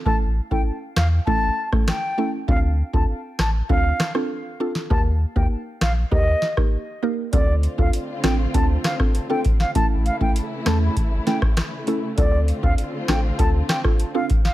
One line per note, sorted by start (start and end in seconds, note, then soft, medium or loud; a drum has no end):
0.06 0.40 A1 loud
0.06 0.28 A3 medium
0.06 0.28 C#4 medium
0.06 0.28 E4 medium
0.06 0.28 A4 loud
0.06 0.17 A5 loud
0.06 kick loud
0.51 0.63 A1 loud
0.51 0.73 A3 medium
0.51 0.73 C#4 medium
0.51 0.73 E4 medium
0.51 0.73 A4 medium
0.51 0.62 G5 medium
0.51 kick medium
0.96 1.20 E2 loud
0.96 1.07 F5 medium
0.96 cross-stick medium
0.96 snare loud
1.27 1.50 A1 loud
1.27 1.49 A3 medium
1.27 1.49 C#4 medium
1.27 1.49 E4 medium
1.27 1.49 A4 loud
1.27 1.69 A5 loud
1.27 kick loud
1.72 1.94 A3 medium
1.72 1.94 C#4 medium
1.72 1.95 E4 medium
1.72 1.95 A4 medium
1.72 kick medium
1.72 cross-stick medium
1.88 2.30 G5 medium
1.88 cross-stick medium
1.88 snare loud
2.18 2.40 A3 medium
2.18 2.40 C#4 medium
2.18 2.40 E4 medium
2.18 2.40 A4 medium
2.48 2.82 D2 loud
2.48 2.70 C4 medium
2.48 2.70 D4 medium
2.48 2.70 F4 medium
2.48 2.70 A4 loud
2.48 2.59 F5 loud
2.48 kick loud
2.93 3.05 D2 loud
2.93 3.15 C4 medium
2.93 3.16 D4 medium
2.93 3.16 F4 medium
2.93 3.16 A4 medium
2.93 3.04 A5 medium
2.93 kick medium
3.39 3.62 A1 medium
3.39 3.50 A5 medium
3.39 cross-stick medium
3.39 snare loud
3.69 3.92 D2 loud
3.69 3.91 C4 loud
3.69 3.91 D4 medium
3.69 3.91 F4 medium
3.69 3.92 A4 loud
3.69 4.12 F5 loud
3.69 kick medium
4.00 cross-stick medium
4.00 snare loud
4.15 4.57 C4 medium
4.15 4.57 D4 medium
4.15 4.57 F4 medium
4.15 4.57 A4 medium
4.15 cross-stick medium
4.60 4.88 C4 medium
4.60 4.88 D4 medium
4.60 4.88 F4 medium
4.60 4.88 A4 medium
4.75 snare medium
4.90 5.25 D#2 loud
4.90 5.12 A#3 medium
4.90 5.12 D#4 medium
4.90 5.13 G4 medium
4.90 5.13 A#4 loud
4.90 5.01 A5 loud
4.90 kick loud
5.36 5.47 D#2 medium
5.36 5.58 A#3 medium
5.36 5.58 D#4 medium
5.36 5.58 G4 medium
5.36 5.58 A#4 medium
5.36 5.47 G5 medium
5.36 kick medium
5.81 6.04 A#1 loud
5.81 5.92 F5 medium
5.81 cross-stick medium
5.81 snare loud
6.11 6.35 D#2 loud
6.11 6.34 A#3 medium
6.11 6.34 D#4 medium
6.11 6.34 G4 medium
6.11 6.34 A#4 loud
6.11 6.55 D#5 loud
6.11 kick loud
6.42 snare medium
6.57 6.79 A#3 medium
6.57 6.79 D#4 medium
6.57 6.79 G4 medium
6.57 6.79 A#4 medium
6.57 kick medium
6.57 cross-stick medium
7.03 7.25 A#3 medium
7.03 7.25 D#4 medium
7.03 7.25 G4 medium
7.03 7.25 A#4 medium
7.33 7.67 D2 loud
7.33 9.73 D3 medium
7.33 9.73 C4 medium
7.33 7.75 C4 loud
7.33 7.75 D4 medium
7.33 9.73 F4 medium
7.33 7.75 F4 medium
7.33 7.75 A4 loud
7.33 7.55 D5 loud
7.33 kick loud
7.33 closed hi-hat medium
7.63 closed hi-hat medium
7.78 7.90 D2 loud
7.78 8.00 C4 medium
7.78 8.00 D4 medium
7.78 8.00 F4 medium
7.78 8.01 A4 medium
7.78 7.89 F5 medium
7.78 kick medium
7.93 closed hi-hat medium
8.24 8.47 A1 loud
8.24 8.46 C4 medium
8.24 8.46 D4 medium
8.24 8.46 F4 medium
8.24 8.46 A4 medium
8.24 8.35 G5 medium
8.24 cross-stick medium
8.24 snare loud
8.24 closed hi-hat medium
8.54 8.77 D2 loud
8.54 8.96 C4 loud
8.54 8.96 D4 medium
8.54 8.96 F4 medium
8.54 8.96 A4 loud
8.54 8.65 A5 medium
8.54 kick loud
8.54 closed hi-hat medium
8.84 8.95 F5 medium
8.84 cross-stick medium
8.84 snare loud
8.84 closed hi-hat medium
8.99 9.21 C4 medium
8.99 9.22 D4 medium
8.99 9.22 F4 medium
8.99 9.22 A4 medium
8.99 kick medium
8.99 cross-stick loud
9.15 closed hi-hat medium
9.30 9.52 C4 medium
9.30 9.52 D4 medium
9.30 9.52 F4 medium
9.30 9.52 A4 medium
9.30 9.41 G5 medium
9.45 kick loud
9.45 closed hi-hat medium
9.60 9.71 F5 medium
9.60 snare medium
9.75 10.10 A1 loud
9.75 12.15 C#3 medium
9.75 12.15 E3 medium
9.75 10.17 A3 medium
9.75 10.17 C#4 medium
9.75 12.15 E4 loud
9.75 10.17 E4 medium
9.75 10.17 A4 loud
9.75 9.86 A5 loud
9.75 kick loud
9.75 closed hi-hat medium
10.06 10.17 F5 medium
10.06 closed hi-hat medium
10.21 10.32 A1 loud
10.21 10.43 A3 medium
10.21 10.43 C#4 medium
10.21 10.43 E4 medium
10.21 10.43 A4 medium
10.21 10.32 G5 medium
10.21 kick medium
10.36 closed hi-hat medium
10.66 10.89 E2 loud
10.66 10.88 A3 medium
10.66 10.88 C#4 medium
10.66 10.88 E4 medium
10.66 10.88 A4 medium
10.66 10.77 A5 medium
10.66 cross-stick medium
10.66 snare loud
10.66 closed hi-hat soft
10.97 11.19 A1 loud
10.97 kick loud
10.97 closed hi-hat medium
11.27 11.49 A3 medium
11.27 11.49 C#4 medium
11.27 11.49 E4 medium
11.27 11.49 A4 medium
11.27 11.38 G5 medium
11.27 snare medium
11.27 closed hi-hat medium
11.42 kick loud
11.42 cross-stick loud
11.57 cross-stick loud
11.57 snare loud
11.57 closed hi-hat medium
11.87 12.09 A3 medium
11.87 12.09 C#4 medium
11.87 12.10 E4 medium
11.87 12.10 A4 medium
11.87 closed hi-hat medium
12.18 12.52 D2 loud
12.18 14.54 D3 medium
12.18 12.60 C4 loud
12.18 14.54 C4 medium
12.18 12.60 D4 medium
12.18 14.54 F4 medium
12.18 12.60 F4 medium
12.18 12.60 A4 loud
12.18 12.39 D5 loud
12.18 kick loud
12.18 closed hi-hat medium
12.48 closed hi-hat medium
12.63 12.75 D2 loud
12.63 12.85 C4 medium
12.63 12.85 D4 medium
12.63 12.85 F4 medium
12.63 12.85 A4 medium
12.63 12.74 F5 medium
12.63 kick medium
12.78 closed hi-hat medium
13.08 13.32 A1 medium
13.08 13.31 C4 medium
13.08 13.31 D4 medium
13.08 13.31 F4 medium
13.08 13.31 A4 medium
13.08 13.20 G5 medium
13.08 cross-stick loud
13.08 snare loud
13.08 closed hi-hat soft
13.39 13.62 D2 loud
13.39 13.81 C4 loud
13.39 13.81 D4 medium
13.39 13.81 F4 medium
13.39 13.81 A4 loud
13.39 13.50 A5 medium
13.39 kick loud
13.39 closed hi-hat medium
13.69 13.80 G5 medium
13.69 cross-stick medium
13.69 snare loud
13.69 closed hi-hat medium
13.84 14.06 C4 medium
13.84 14.06 D4 medium
13.84 14.06 F4 medium
13.84 14.07 A4 medium
13.84 kick medium
13.84 cross-stick medium
14.00 closed hi-hat medium
14.15 14.37 C4 medium
14.15 14.37 D4 medium
14.15 14.37 F4 medium
14.15 14.37 A4 medium
14.15 14.26 F5 medium
14.30 kick loud
14.30 closed hi-hat medium
14.45 14.54 F5 medium
14.45 snare medium